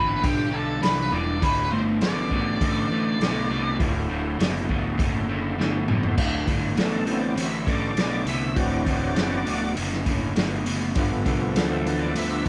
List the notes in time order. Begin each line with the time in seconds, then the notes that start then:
Already playing: G1 G2 E3 D4 F4 A4 B4
0.23 B1 G2 D3 G4, kick, open hi-hat
0.51 G2 D3 A4
0.82 C2 G2 E3 B4, snare, open hi-hat
1.12 E1 G2 E3 D5
1.41 D1 D2 A2 F4 G4 A#4 B4 C#5, kick, open hi-hat
1.62 E4 F#4 A4 C5
1.71 G1 D2 A2 C5
2.01 A1 D2 B2 D5, snare, open hi-hat
2.31 D2 B2, kick
2.61 A1 D2 A2, kick, open hi-hat
2.89 A1 D2 A2
3.19 B1 D2 B2, snare, open hi-hat
3.50 C2 D2 B2
3.79 D1 D2 A2 F4 G4 A#4 C#5, kick, open hi-hat
3.99 E4 F#4 A4 C5
4.09 D1 D2 A2
4.39 F#1 D2 B2, snare, open hi-hat
4.68 D1 D2 B2, kick
4.98 F#1 D2 A2, kick, open hi-hat
5.29 D2 A2
5.58 G1 D2 B2, snare
5.88 F#1 D2 B2, mid tom
6.03 floor tom
6.17 D1 D2 A2, kick, crash
6.47 G1 D2 A2, kick, open hi-hat
6.76 A1 D2 B2 A4, snare, open hi-hat
7.06 D2 B2 E3 F#3 C4 A4, open hi-hat
7.20 D5
7.36 A1 D2 A2 E5, open hi-hat
7.65 A1 D2 A2 C#5, kick, open hi-hat
7.69 D5
7.95 B1 D2 B2, snare, open hi-hat
8.25 C2 D2 B2 E5, open hi-hat
8.56 D1 D2 A2 E3 F#3 C4 F#4 D5, kick, open hi-hat
8.86 D1 D2 A2, kick, open hi-hat
9.16 F#1 D2 B2, snare, open hi-hat
9.45 D1 D2 B2, open hi-hat
9.75 F#1 D2 A2, open hi-hat
9.93 snare
10.06 D2 A2, kick, open hi-hat
10.36 G1 D2 B2, snare, open hi-hat
10.65 F#1 D2 B2, open hi-hat
10.95 G1 G2 D3 F3 A3 B3, kick, open hi-hat
11.25 C2 G2 D3, kick, open hi-hat
11.56 D2 G2 E3 A4, snare, open hi-hat
11.86 G2 E3 A4, open hi-hat
12.02 D5
12.15 D2 G2 D3 E5, open hi-hat
12.44 D2 G2 D3 C#5